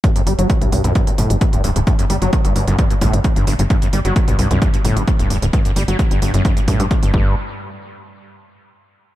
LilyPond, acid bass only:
\new Staff \with { instrumentName = "Acid bass" } { \clef bass \time 4/4 \key c \dorian \tempo 4 = 131 g,16 fis,16 g16 fis16 g,16 g,16 g,16 fis,16 g,16 g,16 a,16 g,16 g,16 g,16 g,16 g,16 | g,16 fis,16 g16 fis16 g,16 g,16 g,16 fis,16 g,16 g,16 a,16 g,16 g,16 g,16 g,16 g,16 | g,16 fis,16 g16 fis16 g,16 g,16 g,16 fis,16 g,16 g,16 a,16 g,16 g,16 g,16 g,16 g,16 | g,16 fis,16 g16 fis16 g,16 g,16 g,16 fis,16 g,16 g,16 a,16 g,16 g,16 g,16 g,8 |
r1 | }